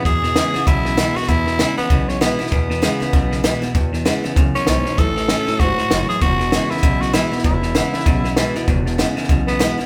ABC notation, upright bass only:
X:1
M:4/4
L:1/8
Q:"Swing" 1/4=195
K:E
V:1 name="Upright bass" clef=bass
E,,3 z B,,,3 z | E,,3 z B,,,3 z | E,,3 z B,,,3 z | E,,3 z C,, z B,,, z |
A,,,3 z G,,, z F,,, z | E,,,3 z B,,,3 z | E,,,3 z B,,,3 z | E,,,3 z B,,,3 z |]